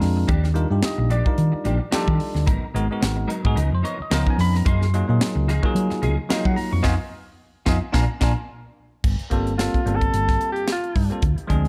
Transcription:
Already playing: G#3 C4 D4 F4 A#4
0.01 F2, muted clean electric guitar stroke, snare, open hi-hat
0.16 muted clean electric guitar stroke
0.27 D#2 F3 A#3 D4 G4, kick, closed hi-hat
0.44 snare
0.54 G3 D4 D#4 F4 A#4, muted clean electric guitar stroke, closed hi-hat
0.70 G2 G3 D4 D#4 F4 G4
0.82 D#5, muted clean electric guitar stroke, muted fingered electric bass stroke, snare, closed hi-hat
0.98 A#1, muted clean electric guitar stroke
1.10 F3 A#3 D4 G4 D5, closed hi-hat
1.25 G3 D4 D#4 F4 A#4, muted clean electric guitar stroke, kick
1.38 D#3, closed hi-hat
1.52 muted clean electric guitar stroke, muted fingered electric bass stroke
1.64 A#1 F3 A#3 D4 G4, closed hi-hat
1.80 muted clean electric guitar stroke
1.91 F3 G3 A#3 D4 D#4 F4 G4 A4 D5, muted fingered electric bass stroke, snare, closed hi-hat
2.08 D#3 A#3 D4 G4, kick
2.19 muted clean electric guitar stroke, muted fingered electric bass stroke, open hi-hat
2.34 D2, muted clean electric guitar stroke, snare
2.46 G#1 F#3 B3 D#4 A#4, kick, closed hi-hat
2.63 muted fingered electric bass stroke
2.74 G#1 G#3 B3 D#4 F#4 A#4, muted clean electric guitar stroke, closed hi-hat
2.91 G#3 B3 D#4 F#4 A#4
3.00 G#1, muted clean electric guitar stroke, snare, closed hi-hat
3.16 muted clean electric guitar stroke
3.28 F#3 B3 D#4 A#4, closed hi-hat
3.43 G#2 G#3 B3 D#4 F#4 G#4, muted clean electric guitar stroke, kick
3.55 C#2 F3 B3 D#4 A#4, closed hi-hat
3.71 F2 C5, muted clean electric guitar stroke
3.83 F3 B3 D#4 A#4 C#5, closed hi-hat
3.98 D#5, muted clean electric guitar stroke, muted fingered electric bass stroke
4.10 C#2 F3 B3 C#4 D#4 A#4 F5, snare, closed hi-hat
4.26 B3 D#4 A#4, kick
4.30 G#5
4.37 F2 B5, muted clean electric guitar stroke, snare, open hi-hat
4.53 A#5, muted clean electric guitar stroke, snare
4.65 F#2 F3 A#3 D#4 G#4 C6, kick, closed hi-hat
4.82 snare
4.93 F#3 A#3 D#4 F4 G#4, muted clean electric guitar stroke, closed hi-hat
5.08 A#2 F#3 A#3 D#4 F4 G#4
5.21 muted clean electric guitar stroke, snare, closed hi-hat
5.35 C#2, muted clean electric guitar stroke
5.48 F3 A#3 D#4 G#4, snare, closed hi-hat
5.63 F#3 A#3 D#4 F4 G#4, muted clean electric guitar stroke, kick
5.75 F#3, closed hi-hat
5.90 muted clean electric guitar stroke, muted fingered electric bass stroke, snare
6.02 C#2 F3 A#3 D#4 G#4, closed hi-hat
6.18 muted clean electric guitar stroke
6.29 F3 F#3 A#3 D#4 F4 G#4 A#4 D#5, muted fingered electric bass stroke, snare, closed hi-hat
6.45 F#3 A#3 D#4 G#4 F#5, kick
6.56 A#5, muted clean electric guitar stroke, muted fingered electric bass stroke, open hi-hat
6.71 F2 C#6, muted clean electric guitar stroke
6.83 F2 B3 D#4 F4 D#5 F5 G#5, kick, snare
7.66 F2 B3 D#4 F4 D#5 F5 G#5, kick, snare
7.92 A#1 A#3 D4 F4 F5 G#5 A#5, kick, snare
8.21 A#1 A#3 D4 F4 F5 G#5 A#5, kick, snare
9.04 G1, kick, crash
9.19 muted fingered electric bass stroke, closed hi-hat
9.30 G1 G3 A#3 C4 F4 A4, kick, closed hi-hat
9.47 closed hi-hat
9.58 G3 A#3 C4 F4 A4, snare, closed hi-hat
9.74 muted fingered electric bass stroke, kick, closed hi-hat
9.85 G1 G3 A#3 C4 F4 A4, closed hi-hat
9.95 A4
10.01 kick, closed hi-hat
10.14 G1, closed hi-hat
10.28 kick, snare
10.41 closed hi-hat
10.52 G4, closed hi-hat
10.68 snare, closed hi-hat
10.72 F4
10.84 closed hi-hat
10.96 G2, kick, open hi-hat
11.10 G3 A#3 C4 F4 A4, muted fingered electric bass stroke, closed hi-hat
11.22 D2, kick, closed hi-hat
11.38 muted fingered electric bass stroke, closed hi-hat
11.47 D2 F3 G#3 C4 D4 G#4, kick, closed hi-hat
11.65 closed hi-hat

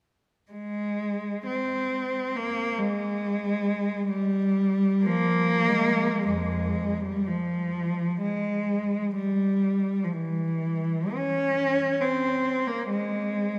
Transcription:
0.52 G#3
1.47 C4
2.36 A#3
2.78 G#3
4.09 G3
5.05 F3 A#3
5.68 G#3
6.28 F2 G#3
7.02 G3
7.27 F3
8.22 G#3
9.16 G3
10.04 F3
10.13 E3
11.15 C#4
12.02 C4
12.67 A#3
12.89 G#3

